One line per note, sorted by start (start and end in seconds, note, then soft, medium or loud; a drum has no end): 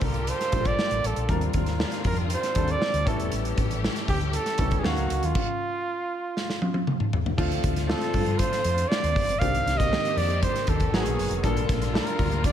0.00 0.30 C2 medium
0.00 1.27 D3 medium
0.00 0.52 G3 medium
0.00 0.52 A#3 medium
0.00 1.27 A#3 medium
0.00 0.52 D4 medium
0.00 0.10 F4 medium
0.00 1.27 F4 medium
0.00 1.27 G4 medium
0.00 0.13 A4 medium
0.00 1.27 A4 medium
0.00 kick medium
0.00 open hi-hat medium
0.04 0.30 A#4 medium
0.14 closed hi-hat soft
0.27 0.68 C5 medium
0.27 closed hi-hat medium
0.41 snare soft
0.41 closed hi-hat medium
0.52 0.72 A#1 medium
0.52 1.16 G3 medium
0.52 1.16 A#3 medium
0.52 1.16 D4 medium
0.52 1.16 F4 medium
0.52 1.16 C5 medium
0.52 kick medium
0.52 closed hi-hat medium
0.65 1.08 D5 loud
0.65 kick medium
0.65 closed hi-hat soft
0.79 snare medium
0.91 1.00 A1 medium
0.91 closed hi-hat soft
1.04 1.13 A1 medium
1.04 1.30 A4 medium
1.04 closed hi-hat medium
1.16 1.26 A#1 medium
1.16 closed hi-hat soft
1.28 1.48 D#2 loud
1.28 3.04 D#3 medium
1.28 2.13 G3 medium
1.28 4.81 G3 medium
1.28 3.04 C4 medium
1.28 2.13 C4 medium
1.28 3.05 D4 medium
1.28 2.14 D4 medium
1.28 3.04 F4 medium
1.28 2.14 F4 medium
1.28 2.14 A#4 medium
1.28 kick medium
1.28 closed hi-hat medium
1.41 closed hi-hat soft
1.53 1.83 D#2 medium
1.53 kick medium
1.53 closed hi-hat medium
1.66 snare soft
1.66 closed hi-hat soft
1.80 snare loud
1.92 snare soft
1.92 closed hi-hat soft
2.04 2.33 F2 medium
2.04 2.18 A#4 medium
2.04 kick medium
2.04 open hi-hat medium
2.17 closed hi-hat soft
2.30 2.73 C5 medium
2.30 closed hi-hat medium
2.43 snare soft
2.43 closed hi-hat soft
2.55 2.75 D#2 medium
2.55 3.04 G3 medium
2.55 3.06 C4 medium
2.55 3.07 D4 medium
2.55 3.07 F4 medium
2.55 3.06 A4 medium
2.55 kick medium
2.55 closed hi-hat medium
2.68 3.09 D5 loud
2.68 closed hi-hat soft
2.82 snare medium
2.93 3.03 D2 medium
2.93 closed hi-hat medium
3.06 3.16 A1 medium
3.06 4.83 E3 medium
3.06 3.91 G3 medium
3.06 4.83 A3 medium
3.06 3.91 B3 medium
3.06 3.91 C#4 medium
3.06 5.33 C#4 medium
3.06 3.91 E4 medium
3.06 4.83 G4 medium
3.06 3.92 A4 medium
3.06 3.32 A4 medium
3.06 kick loud
3.06 closed hi-hat medium
3.19 3.29 E1 medium
3.19 closed hi-hat soft
3.32 3.51 A1 loud
3.32 closed hi-hat medium
3.45 closed hi-hat soft
3.58 3.86 A1 medium
3.58 kick medium
3.58 closed hi-hat medium
3.71 closed hi-hat soft
3.84 snare loud
3.96 snare soft
3.96 closed hi-hat soft
4.08 4.37 D2 medium
4.08 4.20 G4 medium
4.08 kick medium
4.08 open hi-hat medium
4.21 closed hi-hat soft
4.33 4.80 A4 medium
4.33 closed hi-hat medium
4.46 snare soft
4.46 closed hi-hat soft
4.58 4.78 C#2 medium
4.58 4.84 G3 medium
4.58 4.84 B3 medium
4.58 4.83 C#4 medium
4.58 4.84 E4 medium
4.58 4.85 A4 medium
4.58 kick medium
4.58 closed hi-hat medium
4.71 kick medium
4.71 closed hi-hat soft
4.79 4.87 G#4 medium
4.83 4.94 D#2 loud
4.83 5.35 D#3 medium
4.83 5.26 F#3 medium
4.83 5.35 F#3 medium
4.83 5.26 A#3 medium
4.83 5.35 A#3 medium
4.83 5.27 C#4 medium
4.83 5.27 D#4 medium
4.83 5.35 F#4 medium
4.83 5.27 F#4 medium
4.83 5.27 F5 medium
4.83 snare loud
4.97 5.07 C#2 medium
4.97 closed hi-hat soft
5.10 5.20 C#2 medium
5.10 closed hi-hat medium
5.23 5.32 D#2 medium
5.23 6.89 F4 medium
5.23 closed hi-hat soft
5.35 kick loud
5.35 crash medium
6.37 snare soft
6.50 snare medium
6.62 high tom medium
6.74 high tom medium
6.87 mid tom medium
7.00 mid tom medium
7.13 floor tom medium
7.26 floor tom medium
7.38 7.57 D2 loud
7.38 9.39 D3 medium
7.38 7.80 F3 medium
7.38 9.39 F3 medium
7.38 7.80 A3 medium
7.38 9.39 A3 medium
7.38 7.80 C4 medium
7.38 10.89 C4 medium
7.38 7.80 D4 medium
7.38 9.39 F4 medium
7.38 7.81 F4 loud
7.38 kick medium
7.38 crash medium
7.52 closed hi-hat soft
7.64 7.92 D2 medium
7.64 kick medium
7.64 closed hi-hat medium
7.76 snare soft
7.76 closed hi-hat soft
7.87 8.73 F3 medium
7.87 8.73 A3 medium
7.87 8.73 C4 medium
7.87 8.73 D4 medium
7.87 8.73 F4 medium
7.87 8.40 A4 medium
7.87 snare loud
8.01 snare soft
8.01 closed hi-hat soft
8.14 8.43 G2 medium
8.14 kick medium
8.14 open hi-hat medium
8.26 closed hi-hat soft
8.38 8.90 C5 medium
8.38 kick medium
8.38 closed hi-hat medium
8.53 snare soft
8.53 closed hi-hat medium
8.64 8.84 F2 medium
8.64 closed hi-hat medium
8.78 closed hi-hat soft
8.88 9.41 D5 medium
8.88 snare loud
9.03 9.13 D#2 medium
9.03 closed hi-hat soft
9.16 9.26 F1 medium
9.16 kick medium
9.16 open hi-hat medium
9.28 9.38 G1 medium
9.28 closed hi-hat soft
9.39 9.60 C2 loud
9.39 9.83 D#3 medium
9.39 11.42 D#3 medium
9.39 10.91 G3 medium
9.39 10.91 A#3 medium
9.39 9.83 A#3 medium
9.39 9.83 C4 medium
9.39 9.83 D4 medium
9.39 10.91 G4 medium
9.39 9.84 G4 medium
9.39 9.79 F5 loud
9.39 kick loud
9.39 closed hi-hat medium
9.55 closed hi-hat soft
9.66 9.94 C2 medium
9.66 snare soft
9.66 closed hi-hat medium
9.77 10.19 D#5 loud
9.77 kick medium
9.77 snare soft
9.77 closed hi-hat medium
9.91 10.76 D#3 medium
9.91 10.76 A#3 medium
9.91 10.76 C4 medium
9.91 10.76 D4 medium
9.91 10.77 G4 medium
9.91 snare loud
10.05 closed hi-hat soft
10.16 10.45 F2 medium
10.16 10.42 D5 medium
10.16 open hi-hat medium
10.30 closed hi-hat soft
10.43 10.71 C5 medium
10.43 kick medium
10.43 closed hi-hat medium
10.55 snare soft
10.55 closed hi-hat soft
10.67 10.87 D#2 medium
10.67 10.97 A4 medium
10.67 kick medium
10.67 closed hi-hat medium
10.80 kick medium
10.80 closed hi-hat soft
10.92 11.02 G#1 loud
10.92 11.43 B2 medium
10.92 11.35 F#3 medium
10.92 11.43 F#3 medium
10.92 11.44 G#3 medium
10.92 11.35 A#3 medium
10.92 11.35 B3 medium
10.92 11.36 D#4 medium
10.92 11.43 F#4 medium
10.92 11.00 F#4 medium
10.92 11.32 G#4 medium
10.92 snare loud
11.00 11.39 G#4 medium
11.05 11.15 A#1 loud
11.05 closed hi-hat medium
11.18 11.28 F#1 medium
11.18 open hi-hat medium
11.30 11.40 F1 medium
11.30 closed hi-hat soft
11.43 11.62 A#1 loud
11.43 12.52 D3 medium
11.43 12.52 F3 medium
11.43 11.85 G3 medium
11.43 12.52 G3 medium
11.43 11.86 A#3 medium
11.43 12.52 A#3 medium
11.43 11.86 D4 medium
11.43 12.52 F4 medium
11.43 11.86 F4 medium
11.43 11.86 A4 medium
11.43 kick loud
11.43 closed hi-hat medium
11.57 closed hi-hat soft
11.69 11.98 A#1 loud
11.69 kick loud
11.69 snare soft
11.69 closed hi-hat medium
11.82 snare soft
11.82 closed hi-hat medium
11.93 12.52 G3 medium
11.93 12.52 A#3 medium
11.93 12.52 D4 medium
11.93 12.52 F4 medium
11.93 12.47 A#4 medium
11.93 12.52 A5 medium
11.93 snare loud
12.07 closed hi-hat soft
12.19 12.48 D2 medium
12.19 kick medium
12.19 open hi-hat medium
12.32 closed hi-hat soft
12.44 12.52 D5 medium
12.44 kick medium
12.44 closed hi-hat medium